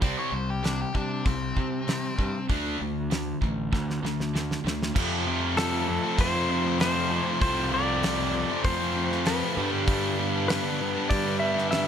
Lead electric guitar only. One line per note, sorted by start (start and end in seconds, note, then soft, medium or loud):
0.03 0.17 D5 medium
0.19 0.33 C#5 medium
0.33 0.48 C5 medium
0.50 0.64 G4 medium
0.65 0.79 D4 medium
0.81 0.95 G4 medium
0.95 1.25 D4 medium
1.26 2.45 C4 medium